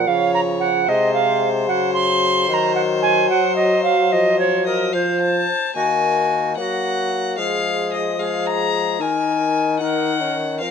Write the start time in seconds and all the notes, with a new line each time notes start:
0.07 C#3 F3 C#5 F5
0.34 A#5
0.60 F#5
0.87 C3 G#3 C5 D#5
1.14 F5
1.68 C#3 F#3 F#5
1.94 C6
2.49 D#3 F#3 C6
2.54 A#5
2.75 F#5
3.02 G#5
3.30 F#3 F#5
3.56 D#5
3.83 F5
4.12 F3 D#5
4.39 C#5
4.66 A#4 D#5
4.93 F3 C5 F5
5.21 A5
5.76 D#3 A#3 F#4 G#5
6.56 F#3 A#3 G4 F#5
6.61 F#4
7.38 F3 G#3 G#4 F5
7.93 D#5
8.19 G#3 G#4 F5
8.46 A#5
9.00 D#3 D#4 A#4 G#5
9.80 D#4 A#4 F#5
10.21 C#4
10.60 F3 C4 A#4 F5